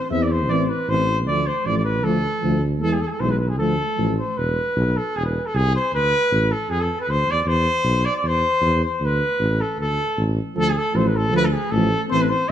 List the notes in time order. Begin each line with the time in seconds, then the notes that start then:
Already playing: C5
0.11 E2 E3 C4 E5
0.23 D5
0.31 C5
0.49 A1 E3 C4 D5
0.61 C5
0.69 B4
0.88 A1 E3 C4 C5
1.27 D2 F3 A3 D5
1.47 C5
1.65 A1 F3 A3 D5
1.77 D5
1.84 B4
2.03 D2 F3 A3 A4
2.43 D2 F3 A3
2.81 E2 E3 G#3 A4
2.92 G#4
3.01 A4
3.07 G#4 A4
3.19 B1 E3 G#3 C5
3.30 B4
3.38 B4
3.49 G#4
3.58 D2 F3 A3 A4
3.97 A1 F3 A3
4.19 C5
4.37 E1 B4
4.76 B1
4.97 A4
5.16 E1 G#4
5.25 B4
5.46 A4
5.55 C2 G#4
5.76 C5
5.92 D2 B4
6.31 A1
6.52 A4
6.69 F2 G#4
6.81 A4
7.00 B4
7.08 D2 C5
7.27 E2 D5
7.42 E2 D5
7.48 C5
7.84 B1
8.05 D5
8.16 D5
8.23 E2
8.27 C5
8.61 E2
8.85 C5
9.00 D2
9.05 B4
9.39 A1
9.61 A4
9.78 D2 A4
10.17 A1
10.55 D2 F3 A3 A4
10.70 G#4
10.78 A4
10.94 A1 F3 A3 C5
11.07 B4
11.16 A4
11.32 D2 F3 A3
11.36 B4
11.45 A4
11.53 G#4
11.71 A1 F3 A3 A4
12.10 A1 E3 C4 C5
12.22 B4
12.29 C5